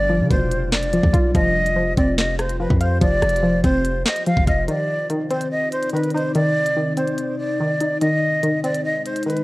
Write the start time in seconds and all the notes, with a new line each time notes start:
Already playing: G1 G3 D4 F4 D5
0.10 F3
0.20 D3
0.31 F1 B2 C5, kick, closed hi-hat
0.51 closed hi-hat
0.72 D5, snare, clap
0.83 closed hi-hat
0.93 F3, closed hi-hat
1.04 D2, kick
1.13 B1 F4, kick, closed hi-hat
1.35 F1 F3 G4 C5 D#5, kick, closed hi-hat
1.66 closed hi-hat
1.76 F3
1.97 F1 C4 D5, kick, closed hi-hat
2.18 D#5, snare, clap, closed hi-hat
2.39 C5, cross-stick, closed hi-hat
2.49 closed hi-hat
2.60 F3 B4
2.70 F2, kick
2.81 C5 F5, closed hi-hat
3.01 F1 F3 D5, kick, closed hi-hat
3.22 F1, cross-stick, closed hi-hat
3.29 closed hi-hat
3.36 closed hi-hat
3.43 F3
3.64 F1 C4 C5, kick, closed hi-hat
3.85 closed hi-hat
4.06 D#5, snare, clap
4.16 closed hi-hat
4.26 F3 F5, closed hi-hat
4.37 F1, kick
4.47 F1 D#5 F5, kick, closed hi-hat
4.68 C3 D#3 C4 D#4 D5, closed hi-hat
5.10 D#3, closed hi-hat
5.31 C4 C5, closed hi-hat
5.41 closed hi-hat
5.51 D#5
5.72 C5, closed hi-hat
5.83 closed hi-hat
5.90 D#3 B4, closed hi-hat
5.97 closed hi-hat
6.04 closed hi-hat
6.10 C5, closed hi-hat
6.14 D#4, closed hi-hat
6.35 D#3 D5, closed hi-hat
6.66 closed hi-hat
6.77 D#3
6.97 C4 C5, closed hi-hat
7.08 closed hi-hat
7.18 closed hi-hat
7.39 D5
7.60 D#3
7.81 D#4, closed hi-hat
8.01 G#2 D#3 G#3 C5 D#5, closed hi-hat
8.43 D#3, closed hi-hat
8.64 C4 D5, closed hi-hat
8.74 closed hi-hat
8.85 D#5
9.06 C5, closed hi-hat
9.16 closed hi-hat
9.23 D#3 B4, closed hi-hat
9.30 closed hi-hat
9.37 closed hi-hat